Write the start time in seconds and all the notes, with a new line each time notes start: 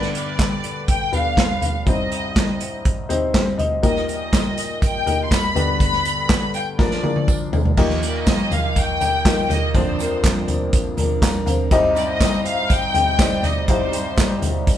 Already playing: G2 D3 B3 D4 G4 B4 D5
0.02 snare
0.15 D5, closed hi-hat
0.39 kick, snare, clap, closed hi-hat
0.64 closed hi-hat
0.88 G5, kick, closed hi-hat
1.12 B3 D4 G4 B4 F5, closed hi-hat, floor tom
1.37 kick, snare, clap, closed hi-hat
1.62 closed hi-hat, floor tom
1.86 C2 G2 C4 D#4 G4 C5 D#5, kick, closed hi-hat
2.12 closed hi-hat
2.36 kick, snare, clap, closed hi-hat
2.60 closed hi-hat
2.85 kick, closed hi-hat
3.09 C4 D#4 G4 C5, closed hi-hat, floor tom
3.33 G4 C5, kick, snare, clap, closed hi-hat
3.58 D#5, closed hi-hat, floor tom
3.83 A#1 A#2 A#3 D#4 G4 A#4 D#5, kick, closed hi-hat, tambourine
3.96 snare
4.08 D#5, closed hi-hat, tambourine
4.33 kick, snare, clap, closed hi-hat, tambourine
4.57 closed hi-hat, tambourine
4.82 G5, kick, closed hi-hat, tambourine
5.06 A#3 D#4 G4 A#4, closed hi-hat, floor tom, tambourine
5.24 C6
5.31 B5, kick, snare, clap, closed hi-hat, tambourine
5.55 G2 D3 B3 D4 G4 B4, closed hi-hat, floor tom, tambourine
5.80 B5, kick, closed hi-hat
5.93 snare
6.05 closed hi-hat, tambourine
6.29 kick, snare, clap, closed hi-hat, tambourine
6.54 G5, closed hi-hat, tambourine
6.78 A#2 F3 D4 F4 G#4 A#4 D5, kick, snare, tambourine
6.91 snare
7.03 D4 F4 G#4 A#4, high tom, tambourine
7.16 high tom
7.28 kick, tambourine
7.53 floor tom, tambourine
7.65 floor tom
7.77 D#2 A#2 D#3 F3 A#3 D#4 F4 G4 A#4, kick, crash, tambourine
7.90 snare
8.02 A#3 D#4 G4 D5, closed hi-hat, tambourine
8.17 D#5
8.26 F3 A#3 D#4 G4, kick, snare, clap, closed hi-hat, tambourine
8.51 F5, closed hi-hat, floor tom, tambourine
8.76 G5, kick, closed hi-hat, tambourine
9.00 A#3 D#4 G4, closed hi-hat, floor tom
9.25 F3 A#3 D#4 F4 G4 A#4, kick, snare, clap, closed hi-hat, tambourine
9.49 A#3 D#4 G4 D#5, closed hi-hat, floor tom, tambourine
9.74 A#1 F2 A#2 D3 F3 C4 D4 F4 A#4 C5, kick, closed hi-hat, tambourine
9.99 F3 C4 D4 A#4, closed hi-hat, tambourine
10.23 F3 C4 D4 A#4, kick, snare, clap, closed hi-hat, tambourine
10.48 closed hi-hat, floor tom, tambourine
10.73 kick, closed hi-hat, tambourine
10.97 F3 C4 D4 A#4, closed hi-hat, floor tom
11.21 F3 C4 D4 A#4 F5 A#5, kick, snare, clap, closed hi-hat, tambourine
11.46 F3 C4 D4 A#4 C5 F5, closed hi-hat, floor tom, tambourine
11.71 C2 G2 C3 G3 C4 D#4 G4 C5 D#5, kick, closed hi-hat, tambourine
11.95 C4 D#4 G4 D5, closed hi-hat, tambourine
12.10 D#5
12.20 G3 C4 D#4 G4, kick, snare, clap, closed hi-hat, tambourine
12.45 F5, closed hi-hat, tambourine
12.70 G5, kick, closed hi-hat, tambourine
12.94 C4 D#4 G4, closed hi-hat, floor tom, tambourine
13.18 G3 C4 D#4 G4 C5 D5, kick, snare, clap, closed hi-hat, tambourine
13.43 C4 D#4 G4 D#5, closed hi-hat, floor tom, tambourine
13.68 C2 G2 C3 G3 C4 D#4 G4 C5 F5, kick, closed hi-hat
13.92 C4 D#4 G4, closed hi-hat, tambourine
14.16 G3 C4 D#4 G4, kick, snare, clap, closed hi-hat, tambourine
14.42 closed hi-hat, floor tom, tambourine
14.67 kick, closed hi-hat, tambourine